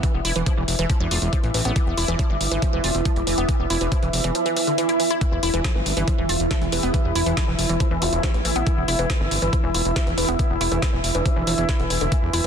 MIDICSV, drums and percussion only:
0, 0, Header, 1, 2, 480
1, 0, Start_track
1, 0, Tempo, 431655
1, 37, Time_signature, 4, 2, 24, 8
1, 13863, End_track
2, 0, Start_track
2, 0, Title_t, "Drums"
2, 36, Note_on_c, 9, 42, 75
2, 37, Note_on_c, 9, 36, 116
2, 148, Note_off_c, 9, 36, 0
2, 148, Note_off_c, 9, 42, 0
2, 276, Note_on_c, 9, 46, 97
2, 387, Note_off_c, 9, 46, 0
2, 396, Note_on_c, 9, 42, 53
2, 508, Note_off_c, 9, 42, 0
2, 516, Note_on_c, 9, 42, 75
2, 517, Note_on_c, 9, 36, 114
2, 628, Note_off_c, 9, 36, 0
2, 628, Note_off_c, 9, 42, 0
2, 756, Note_on_c, 9, 46, 100
2, 868, Note_off_c, 9, 46, 0
2, 876, Note_on_c, 9, 42, 53
2, 988, Note_off_c, 9, 42, 0
2, 996, Note_on_c, 9, 42, 75
2, 997, Note_on_c, 9, 36, 113
2, 1107, Note_off_c, 9, 42, 0
2, 1108, Note_off_c, 9, 36, 0
2, 1236, Note_on_c, 9, 46, 99
2, 1348, Note_off_c, 9, 46, 0
2, 1356, Note_on_c, 9, 42, 48
2, 1468, Note_off_c, 9, 42, 0
2, 1477, Note_on_c, 9, 36, 106
2, 1477, Note_on_c, 9, 42, 77
2, 1588, Note_off_c, 9, 36, 0
2, 1588, Note_off_c, 9, 42, 0
2, 1596, Note_on_c, 9, 42, 36
2, 1707, Note_off_c, 9, 42, 0
2, 1716, Note_on_c, 9, 46, 100
2, 1827, Note_off_c, 9, 46, 0
2, 1836, Note_on_c, 9, 42, 54
2, 1947, Note_off_c, 9, 42, 0
2, 1956, Note_on_c, 9, 42, 81
2, 1957, Note_on_c, 9, 36, 116
2, 2067, Note_off_c, 9, 42, 0
2, 2068, Note_off_c, 9, 36, 0
2, 2196, Note_on_c, 9, 46, 94
2, 2307, Note_off_c, 9, 46, 0
2, 2316, Note_on_c, 9, 42, 55
2, 2427, Note_off_c, 9, 42, 0
2, 2437, Note_on_c, 9, 36, 110
2, 2437, Note_on_c, 9, 42, 82
2, 2548, Note_off_c, 9, 36, 0
2, 2548, Note_off_c, 9, 42, 0
2, 2676, Note_on_c, 9, 46, 94
2, 2787, Note_off_c, 9, 46, 0
2, 2796, Note_on_c, 9, 42, 56
2, 2908, Note_off_c, 9, 42, 0
2, 2916, Note_on_c, 9, 42, 82
2, 2917, Note_on_c, 9, 36, 114
2, 3028, Note_off_c, 9, 36, 0
2, 3028, Note_off_c, 9, 42, 0
2, 3156, Note_on_c, 9, 46, 101
2, 3268, Note_off_c, 9, 46, 0
2, 3277, Note_on_c, 9, 42, 53
2, 3388, Note_off_c, 9, 42, 0
2, 3396, Note_on_c, 9, 42, 80
2, 3397, Note_on_c, 9, 36, 110
2, 3508, Note_off_c, 9, 36, 0
2, 3508, Note_off_c, 9, 42, 0
2, 3517, Note_on_c, 9, 42, 35
2, 3628, Note_off_c, 9, 42, 0
2, 3636, Note_on_c, 9, 46, 95
2, 3748, Note_off_c, 9, 46, 0
2, 3756, Note_on_c, 9, 42, 54
2, 3868, Note_off_c, 9, 42, 0
2, 3877, Note_on_c, 9, 36, 118
2, 3877, Note_on_c, 9, 42, 77
2, 3988, Note_off_c, 9, 36, 0
2, 3988, Note_off_c, 9, 42, 0
2, 4116, Note_on_c, 9, 46, 100
2, 4227, Note_off_c, 9, 46, 0
2, 4236, Note_on_c, 9, 42, 52
2, 4348, Note_off_c, 9, 42, 0
2, 4357, Note_on_c, 9, 36, 112
2, 4357, Note_on_c, 9, 42, 82
2, 4468, Note_off_c, 9, 36, 0
2, 4468, Note_off_c, 9, 42, 0
2, 4477, Note_on_c, 9, 42, 38
2, 4588, Note_off_c, 9, 42, 0
2, 4597, Note_on_c, 9, 46, 98
2, 4708, Note_off_c, 9, 46, 0
2, 4717, Note_on_c, 9, 42, 57
2, 4828, Note_off_c, 9, 42, 0
2, 4837, Note_on_c, 9, 42, 81
2, 4948, Note_off_c, 9, 42, 0
2, 4957, Note_on_c, 9, 42, 38
2, 5068, Note_off_c, 9, 42, 0
2, 5077, Note_on_c, 9, 46, 102
2, 5188, Note_off_c, 9, 46, 0
2, 5196, Note_on_c, 9, 42, 51
2, 5308, Note_off_c, 9, 42, 0
2, 5317, Note_on_c, 9, 42, 85
2, 5428, Note_off_c, 9, 42, 0
2, 5437, Note_on_c, 9, 42, 37
2, 5548, Note_off_c, 9, 42, 0
2, 5557, Note_on_c, 9, 46, 98
2, 5668, Note_off_c, 9, 46, 0
2, 5677, Note_on_c, 9, 42, 57
2, 5788, Note_off_c, 9, 42, 0
2, 5797, Note_on_c, 9, 36, 121
2, 5797, Note_on_c, 9, 42, 80
2, 5908, Note_off_c, 9, 36, 0
2, 5908, Note_off_c, 9, 42, 0
2, 6037, Note_on_c, 9, 46, 101
2, 6148, Note_off_c, 9, 46, 0
2, 6157, Note_on_c, 9, 42, 55
2, 6268, Note_off_c, 9, 42, 0
2, 6277, Note_on_c, 9, 36, 117
2, 6277, Note_on_c, 9, 38, 122
2, 6277, Note_on_c, 9, 42, 81
2, 6388, Note_off_c, 9, 36, 0
2, 6388, Note_off_c, 9, 38, 0
2, 6388, Note_off_c, 9, 42, 0
2, 6517, Note_on_c, 9, 46, 97
2, 6628, Note_off_c, 9, 46, 0
2, 6637, Note_on_c, 9, 42, 56
2, 6748, Note_off_c, 9, 42, 0
2, 6757, Note_on_c, 9, 36, 120
2, 6757, Note_on_c, 9, 42, 82
2, 6868, Note_off_c, 9, 36, 0
2, 6868, Note_off_c, 9, 42, 0
2, 6996, Note_on_c, 9, 46, 106
2, 7108, Note_off_c, 9, 46, 0
2, 7117, Note_on_c, 9, 42, 51
2, 7228, Note_off_c, 9, 42, 0
2, 7236, Note_on_c, 9, 38, 122
2, 7236, Note_on_c, 9, 42, 85
2, 7237, Note_on_c, 9, 36, 110
2, 7348, Note_off_c, 9, 36, 0
2, 7348, Note_off_c, 9, 38, 0
2, 7348, Note_off_c, 9, 42, 0
2, 7356, Note_on_c, 9, 42, 36
2, 7468, Note_off_c, 9, 42, 0
2, 7477, Note_on_c, 9, 46, 103
2, 7588, Note_off_c, 9, 46, 0
2, 7596, Note_on_c, 9, 42, 58
2, 7708, Note_off_c, 9, 42, 0
2, 7716, Note_on_c, 9, 42, 76
2, 7717, Note_on_c, 9, 36, 121
2, 7828, Note_off_c, 9, 36, 0
2, 7828, Note_off_c, 9, 42, 0
2, 7956, Note_on_c, 9, 46, 109
2, 8068, Note_off_c, 9, 46, 0
2, 8076, Note_on_c, 9, 42, 51
2, 8188, Note_off_c, 9, 42, 0
2, 8196, Note_on_c, 9, 38, 127
2, 8196, Note_on_c, 9, 42, 83
2, 8197, Note_on_c, 9, 36, 125
2, 8308, Note_off_c, 9, 36, 0
2, 8308, Note_off_c, 9, 38, 0
2, 8308, Note_off_c, 9, 42, 0
2, 8436, Note_on_c, 9, 46, 110
2, 8548, Note_off_c, 9, 46, 0
2, 8556, Note_on_c, 9, 42, 54
2, 8667, Note_off_c, 9, 42, 0
2, 8676, Note_on_c, 9, 42, 81
2, 8677, Note_on_c, 9, 36, 120
2, 8787, Note_off_c, 9, 42, 0
2, 8788, Note_off_c, 9, 36, 0
2, 8916, Note_on_c, 9, 46, 107
2, 9027, Note_off_c, 9, 46, 0
2, 9037, Note_on_c, 9, 42, 54
2, 9148, Note_off_c, 9, 42, 0
2, 9156, Note_on_c, 9, 38, 127
2, 9156, Note_on_c, 9, 42, 81
2, 9157, Note_on_c, 9, 36, 120
2, 9268, Note_off_c, 9, 36, 0
2, 9268, Note_off_c, 9, 38, 0
2, 9268, Note_off_c, 9, 42, 0
2, 9277, Note_on_c, 9, 42, 36
2, 9388, Note_off_c, 9, 42, 0
2, 9396, Note_on_c, 9, 46, 107
2, 9507, Note_off_c, 9, 46, 0
2, 9516, Note_on_c, 9, 42, 53
2, 9627, Note_off_c, 9, 42, 0
2, 9636, Note_on_c, 9, 42, 78
2, 9637, Note_on_c, 9, 36, 126
2, 9747, Note_off_c, 9, 42, 0
2, 9748, Note_off_c, 9, 36, 0
2, 9876, Note_on_c, 9, 46, 103
2, 9988, Note_off_c, 9, 46, 0
2, 9996, Note_on_c, 9, 42, 49
2, 10108, Note_off_c, 9, 42, 0
2, 10117, Note_on_c, 9, 36, 118
2, 10117, Note_on_c, 9, 38, 126
2, 10117, Note_on_c, 9, 42, 78
2, 10228, Note_off_c, 9, 36, 0
2, 10228, Note_off_c, 9, 38, 0
2, 10228, Note_off_c, 9, 42, 0
2, 10356, Note_on_c, 9, 46, 108
2, 10468, Note_off_c, 9, 46, 0
2, 10477, Note_on_c, 9, 42, 52
2, 10588, Note_off_c, 9, 42, 0
2, 10597, Note_on_c, 9, 36, 120
2, 10597, Note_on_c, 9, 42, 75
2, 10708, Note_off_c, 9, 36, 0
2, 10708, Note_off_c, 9, 42, 0
2, 10836, Note_on_c, 9, 46, 106
2, 10948, Note_off_c, 9, 46, 0
2, 10957, Note_on_c, 9, 42, 50
2, 11068, Note_off_c, 9, 42, 0
2, 11077, Note_on_c, 9, 36, 122
2, 11077, Note_on_c, 9, 38, 127
2, 11077, Note_on_c, 9, 42, 77
2, 11188, Note_off_c, 9, 36, 0
2, 11188, Note_off_c, 9, 38, 0
2, 11188, Note_off_c, 9, 42, 0
2, 11197, Note_on_c, 9, 42, 35
2, 11308, Note_off_c, 9, 42, 0
2, 11316, Note_on_c, 9, 46, 110
2, 11428, Note_off_c, 9, 46, 0
2, 11436, Note_on_c, 9, 42, 52
2, 11548, Note_off_c, 9, 42, 0
2, 11556, Note_on_c, 9, 42, 72
2, 11557, Note_on_c, 9, 36, 125
2, 11668, Note_off_c, 9, 36, 0
2, 11668, Note_off_c, 9, 42, 0
2, 11796, Note_on_c, 9, 46, 105
2, 11908, Note_off_c, 9, 46, 0
2, 11917, Note_on_c, 9, 42, 49
2, 12028, Note_off_c, 9, 42, 0
2, 12036, Note_on_c, 9, 38, 111
2, 12036, Note_on_c, 9, 42, 77
2, 12037, Note_on_c, 9, 36, 119
2, 12148, Note_off_c, 9, 36, 0
2, 12148, Note_off_c, 9, 38, 0
2, 12148, Note_off_c, 9, 42, 0
2, 12276, Note_on_c, 9, 46, 101
2, 12387, Note_off_c, 9, 46, 0
2, 12396, Note_on_c, 9, 42, 50
2, 12507, Note_off_c, 9, 42, 0
2, 12516, Note_on_c, 9, 36, 122
2, 12516, Note_on_c, 9, 42, 75
2, 12627, Note_off_c, 9, 42, 0
2, 12628, Note_off_c, 9, 36, 0
2, 12756, Note_on_c, 9, 46, 106
2, 12867, Note_off_c, 9, 46, 0
2, 12876, Note_on_c, 9, 42, 45
2, 12988, Note_off_c, 9, 42, 0
2, 12996, Note_on_c, 9, 36, 124
2, 12996, Note_on_c, 9, 38, 116
2, 12996, Note_on_c, 9, 42, 81
2, 13108, Note_off_c, 9, 36, 0
2, 13108, Note_off_c, 9, 38, 0
2, 13108, Note_off_c, 9, 42, 0
2, 13116, Note_on_c, 9, 42, 32
2, 13228, Note_off_c, 9, 42, 0
2, 13236, Note_on_c, 9, 46, 103
2, 13347, Note_off_c, 9, 46, 0
2, 13356, Note_on_c, 9, 42, 52
2, 13468, Note_off_c, 9, 42, 0
2, 13476, Note_on_c, 9, 36, 122
2, 13476, Note_on_c, 9, 42, 76
2, 13587, Note_off_c, 9, 42, 0
2, 13588, Note_off_c, 9, 36, 0
2, 13716, Note_on_c, 9, 46, 107
2, 13827, Note_off_c, 9, 46, 0
2, 13863, End_track
0, 0, End_of_file